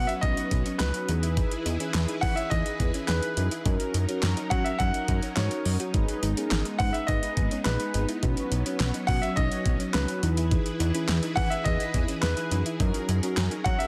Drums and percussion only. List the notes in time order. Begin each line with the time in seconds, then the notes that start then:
0.09 closed hi-hat
0.23 kick, closed hi-hat
0.37 closed hi-hat
0.51 kick, closed hi-hat
0.66 closed hi-hat
0.80 snare, clap, closed hi-hat
0.94 closed hi-hat
1.09 closed hi-hat
1.23 closed hi-hat
1.37 kick, closed hi-hat
1.51 closed hi-hat
1.66 closed hi-hat
1.80 closed hi-hat
1.94 snare, clap, closed hi-hat
2.08 closed hi-hat
2.23 kick, open hi-hat
2.37 closed hi-hat
2.51 kick, closed hi-hat
2.66 closed hi-hat
2.80 kick, closed hi-hat
2.94 closed hi-hat
3.08 snare, clap, closed hi-hat
3.23 closed hi-hat
3.37 closed hi-hat
3.51 closed hi-hat
3.66 kick, closed hi-hat
3.80 closed hi-hat
3.94 closed hi-hat
4.09 closed hi-hat
4.23 snare, clap, closed hi-hat
4.37 closed hi-hat
4.51 kick, closed hi-hat
4.66 closed hi-hat
4.80 kick, closed hi-hat
4.94 closed hi-hat
5.08 kick, closed hi-hat
5.22 closed hi-hat
5.37 snare, clap, closed hi-hat
5.51 closed hi-hat
5.65 open hi-hat
5.80 closed hi-hat
5.94 kick, closed hi-hat
6.08 closed hi-hat
6.23 closed hi-hat
6.37 closed hi-hat
6.51 snare, clap, closed hi-hat
6.65 closed hi-hat
6.80 kick, open hi-hat
6.94 closed hi-hat
7.08 kick, closed hi-hat
7.23 closed hi-hat
7.37 kick, closed hi-hat
7.51 closed hi-hat
7.65 snare, clap, closed hi-hat
7.80 closed hi-hat
7.94 closed hi-hat
8.09 closed hi-hat
8.23 kick, closed hi-hat
8.37 closed hi-hat
8.52 closed hi-hat
8.66 closed hi-hat
8.80 snare, clap, closed hi-hat
8.94 closed hi-hat
9.09 kick, open hi-hat
9.23 closed hi-hat
9.37 kick, closed hi-hat
9.52 closed hi-hat
9.66 kick, closed hi-hat
9.80 closed hi-hat
9.94 snare, clap, closed hi-hat
10.08 closed hi-hat
10.23 closed hi-hat
10.37 closed hi-hat
10.51 kick, closed hi-hat
10.66 closed hi-hat
10.80 closed hi-hat
10.95 closed hi-hat
11.09 snare, clap, closed hi-hat
11.23 closed hi-hat
11.37 kick, open hi-hat
11.52 closed hi-hat
11.66 kick, closed hi-hat
11.80 closed hi-hat
11.94 kick, closed hi-hat
12.08 closed hi-hat
12.23 snare, clap, closed hi-hat
12.37 closed hi-hat
12.51 closed hi-hat
12.66 closed hi-hat
12.80 kick, closed hi-hat
12.94 closed hi-hat
13.09 closed hi-hat
13.23 closed hi-hat
13.37 snare, clap, closed hi-hat
13.51 closed hi-hat
13.66 kick, closed hi-hat
13.80 closed hi-hat